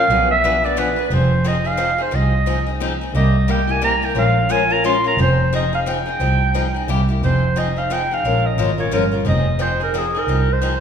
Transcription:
Already playing: F5
0.09 B1 B2 F3 B3 D4 G#4 B4
0.31 E5
0.44 B2 F3 B3 D4 G#4 B4
0.64 B3 D4 G#4 B4 D5
0.77 B2 F3 B3 D4 G#4 B4
0.96 B3 D4 G#4 B4
1.08 F1 F3 C4 D#4 G#4 B4
1.14 C5
1.45 F3 C4 D#4 G#4 D#5
1.64 C4 D#4 G#4 F5
1.77 F3 C4 D#4 G#4
1.98 C4 D#4 G#4
2.02 C5
2.11 C2 F3 C4 D#4 G#4
2.15 D#5
2.46 F3 C4 D#4 G#4
2.67 C4 D#4 G#4
2.80 F3 C4 D#4 G#4
3.01 C4 D#4 G#4
3.14 C2 C3 G3 A#3 E4 G4 D#5
3.48 C3 G3 A#3 E4 G4 G5
3.67 A#3 E4 G4 G#5
3.82 C3 G3 A#3 E4 G4 A#5
4.02 A#3 E4 G4 G5
4.15 A#1 F3 G#3 C#4 F4 A#4 F5
4.49 F3 G#3 C#4 F4 A#4 G#5
4.70 C#4 F4 A#4 A#5
4.84 F3 G#3 C#4 F4 A#4 C6
5.04 C#4 F4 A#4 A#5
5.17 F1 F3 C4 D#4 G#4
5.22 C5
5.53 F3 C4 D#4 G#4 D#5
5.73 C4 D#4 G#4 F5
5.86 F3 C4 D#4 G#4 G5
6.06 C4 D#4 G#4
6.20 C2 F3 C4 D#4 G#4
6.54 F3 C4 D#4 G#4
6.74 C4 D#4 G#4
6.88 C2 C3 G3 A#3 E4 G4
7.09 A#3 E4 G4
7.22 F1 F3 C4 D#4 G#4 C5
7.56 F3 C4 D#4 G#4 D#5
7.77 C4 D#4 G#4 F5
7.90 F3 C4 D#4 G#4 G5
8.11 C4 D#4 G#4 F5
8.24 A#1 F3 G#3 C#4 F4 A#4
8.46 D#5
8.58 G#1 F3 G#3 C#4 F4 A#4
8.78 C#4 F4 A#4 C#5
8.91 G1 F3 G#3 C#4 F4 A#4
9.12 C#4 F4 A#4
9.25 F1 F3 C4 D#4 G#4 D#5
9.59 F3 C4 D#4 G#4 C5
9.80 C4 D#4 G#4 A#4
9.94 F3 C4 D#4 G#4
9.98 G#4
10.15 C4 D#4 G#4 A#4
10.27 C2 F3 C4 D#4 G#4
10.53 C5
10.62 F3 C4 D#4 G#4

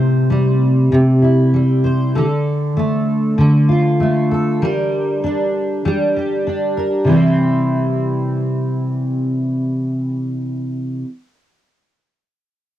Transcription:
Already playing: C3 E4 C5
0.30 G3
0.92 C3
1.22 E4
1.54 G3
1.84 C5
2.15 D3 A4
2.77 A3
3.38 D3
3.69 F4
4.00 A3
4.31 A4
4.62 G3 A#4
5.24 D4
5.85 G3
6.16 G4
6.47 D4
6.77 A#4
7.04 C3 E3
7.10 G3 C4
7.14 E4 C5

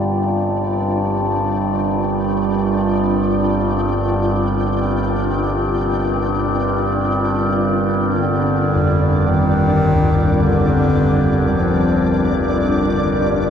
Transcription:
Already playing: G1 G2 G3 C4 D4 F4 G4 A#4 G5
8.10 D3 D5
8.76 F2
9.27 D#3
9.92 D2
10.42 D3
11.49 G3
11.56 F3
12.94 G4

